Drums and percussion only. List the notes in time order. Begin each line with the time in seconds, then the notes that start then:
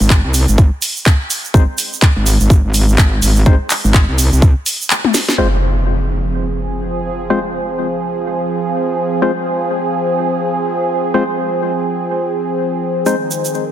0.01 shaker
0.10 kick, clap, shaker
0.34 open hi-hat, shaker
0.48 shaker
0.58 kick, shaker
0.82 open hi-hat, shaker
0.96 shaker
1.06 kick, clap, shaker
1.30 open hi-hat, shaker
1.45 shaker
1.54 kick, shaker
1.78 open hi-hat, shaker
1.93 shaker
2.02 kick, clap, shaker
2.26 open hi-hat, shaker
2.40 shaker
2.50 kick, shaker
2.74 open hi-hat, shaker
2.88 shaker
2.98 kick, clap, shaker
3.22 open hi-hat, shaker
3.36 shaker
3.46 kick, shaker
3.70 clap, open hi-hat, shaker
3.85 shaker
3.94 kick, clap, shaker
4.18 open hi-hat, shaker
4.33 shaker
4.42 kick, shaker
4.66 open hi-hat, shaker
4.81 shaker
4.90 clap, shaker
5.05 high tom
5.14 snare, open hi-hat, shaker
5.29 snare, shaker
13.06 shaker
13.31 shaker
13.45 shaker
13.54 shaker